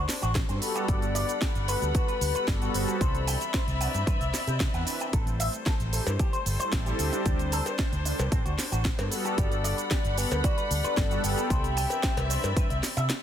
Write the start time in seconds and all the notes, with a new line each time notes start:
Already playing: G3 D4 C5
0.09 snare, open hi-hat, shaker
0.22 A1 F#4, closed hi-hat, shaker
0.35 kick, snare, closed hi-hat, shaker
0.48 G2 G3 B3 C4 F#4 A4, closed hi-hat, shaker
0.62 G3 A4 F#5 B5, open hi-hat, shaker
0.75 G4, closed hi-hat, shaker
0.88 G1 G3 B3 F#4 A4 D5, kick, closed hi-hat, shaker
1.02 closed hi-hat, shaker
1.15 D5, open hi-hat, shaker
1.29 closed hi-hat, shaker
1.41 G4, kick, snare, closed hi-hat, shaker
1.55 G1, closed hi-hat, shaker
1.68 G3 B3 F#4 A4 B4, open hi-hat, shaker
1.82 D2, closed hi-hat, shaker
1.95 F#4 B4, kick, closed hi-hat, shaker
2.08 B4, closed hi-hat, shaker
2.21 D2, open hi-hat, shaker
2.34 G3 B3 F#4 A4 B4, closed hi-hat, shaker
2.48 G1 D5, kick, snare, closed hi-hat, shaker
2.61 F#4, closed hi-hat, shaker
2.74 G1 G3 B3 F#4 A4 C5, open hi-hat, shaker
2.88 G4, closed hi-hat, shaker
3.00 C2 E3 C4 D4 A4 C5 D5 E5, kick, closed hi-hat, shaker
3.15 closed hi-hat, shaker
3.27 G5, open hi-hat, shaker
3.41 closed hi-hat, shaker
3.54 C5, kick, snare, closed hi-hat, shaker
3.68 C2, closed hi-hat, shaker
3.80 E3 C4 D4 B4 F#5, open hi-hat, shaker
3.94 G2, closed hi-hat, shaker
4.07 G2 B4, kick, closed hi-hat, shaker
4.21 C2 E5, closed hi-hat, shaker
4.34 snare, open hi-hat, shaker
4.47 C3 G4, closed hi-hat, shaker
4.60 kick, snare, closed hi-hat, shaker
4.73 E2 E3 C4 D4 B4 F#5, closed hi-hat, shaker
4.87 open hi-hat, shaker
5.00 G5, closed hi-hat, shaker
5.13 A1 G3 A3 C4 E4 A4 C5, kick, closed hi-hat, shaker
5.27 closed hi-hat, shaker
5.40 E5, open hi-hat, shaker
5.53 closed hi-hat, shaker
5.66 A4, kick, snare, closed hi-hat, shaker
5.80 A1, closed hi-hat, shaker
5.93 G3 C4 E4 G4 A4, open hi-hat, shaker
6.07 G2, closed hi-hat, cowbell, shaker
6.19 G4, kick, closed hi-hat, shaker
6.33 C5, closed hi-hat, shaker
6.46 G1, open hi-hat, shaker
6.59 G3 C4 E4 A4 C5, muted fingered electric bass stroke, closed hi-hat, shaker
6.73 A1, kick, snare, closed hi-hat, shaker
6.86 G4, closed hi-hat, shaker
6.99 D2 G3 C4 D4 G4, open hi-hat, shaker
7.13 D4, closed hi-hat, shaker
7.25 D2 G3 C4 D4 G4, kick, closed hi-hat, shaker
7.39 closed hi-hat, shaker
7.52 A4, open hi-hat, shaker
7.66 closed hi-hat, cowbell, shaker
7.79 D4, kick, snare, closed hi-hat, shaker
7.93 D2, closed hi-hat, shaker
8.05 G3 C4 D4 A4, open hi-hat, shaker
8.19 C2, closed hi-hat, cowbell, shaker
8.32 A1 C4, kick, closed hi-hat, shaker
8.45 D2 F#4, closed hi-hat, shaker
8.58 snare, open hi-hat, shaker
8.72 A1 F#4, closed hi-hat, shaker
8.85 kick, snare, closed hi-hat, shaker
8.98 G2 G3 B3 C4 F#4 A4, closed hi-hat, cowbell, shaker
9.11 G3 A4 F#5 B5, open hi-hat, shaker
9.25 G4, closed hi-hat, shaker
9.37 G1 G3 B3 F#4 G4 A4 D5, kick, closed hi-hat, shaker
9.52 closed hi-hat, shaker
9.64 D5, open hi-hat, shaker
9.78 closed hi-hat, shaker
9.91 G4, kick, snare, closed hi-hat, shaker
10.05 G1, closed hi-hat, shaker
10.17 G3 B3 F#4 G4 A4 B4, open hi-hat, shaker
10.31 D2, closed hi-hat, cowbell, shaker
10.44 F#4 D5, kick, closed hi-hat, shaker
10.57 B4, closed hi-hat, shaker
10.71 D2, open hi-hat, shaker
10.84 G3 B3 A4 B4 F#5, muted fingered electric bass stroke, closed hi-hat, shaker
10.97 G1, kick, snare, closed hi-hat, shaker
11.11 F#4, closed hi-hat, shaker
11.23 G1 G3 B3 F#4 A4 G5, open hi-hat, shaker
11.37 G4, closed hi-hat, shaker
11.50 C2 E3 C4 D4 A4 C5 D5 E5, kick, closed hi-hat, shaker
11.64 closed hi-hat, shaker
11.77 G5, open hi-hat, shaker
11.90 closed hi-hat, cowbell, shaker
12.03 C5, kick, snare, closed hi-hat, shaker
12.17 C2, closed hi-hat, cowbell, shaker
12.30 E3 C4 D4 B4 C5, open hi-hat, shaker
12.44 G2, closed hi-hat, cowbell, shaker
12.57 G2 B4, kick, closed hi-hat, shaker
12.70 C2 E5, closed hi-hat, shaker
12.83 snare, open hi-hat, shaker
12.97 C3 E5, closed hi-hat, shaker
13.10 snare, closed hi-hat, shaker